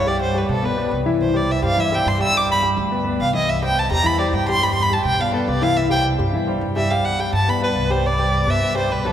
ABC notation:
X:1
M:4/4
L:1/8
Q:1/4=210
K:C
V:1 name="Violin"
d c B A B2 z2 | c d e f e g c' e' | d' b z4 f _e | e g a _b =b d g c' |
(3b c' b a g f A d f | e g z4 z e | f ^f g a b B2 c | d3 e2 c B A |]
V:2 name="Grand piano"
[G,Gg]2 [G,Gg]2 [B,Bd] [B,Bd]2 [E,Ee]- | [E,Ee] [G,Gc]2 [G,Gc] [E,Ee] [G,Gc]2 [G,Gg] | [G,Gg]2 [G,Gg]2 [B,Bd] [B,Bd]2 [E,Ee]- | [E,Ee] [G,Gc]2 [G,Gc] [E,Ee] [G,Gc]2 [G,Gg] |
[G,Gg]2 [G,Gg]2 [B,Bd] [B,Bd]2 [E,Ee]- | [E,Ee] [G,Gc]2 [G,Gc] [E,Ee] [G,Gc]2 [G,Gg] | [G,Gg]2 [G,Gg]2 [B,Bd] [B,Bd]2 [G,Gg] | z [G,Gg]2 [B,Bc] [B,Bc] [G,Gg]2 [^F,^F^f] |]
V:3 name="Upright bass" clef=bass
G,,3 B,,3 C,,2- | C,,3 G,,3 G,,2- | G,,3 D,,3 C,,2- | C,,3 E,,3 G,,2- |
G,,3 B,,3 C,,2- | C,,3 G,,3 G,,2- | G,,3 G,,3 C,,2- | C,,3 G,,3 B,,,2 |]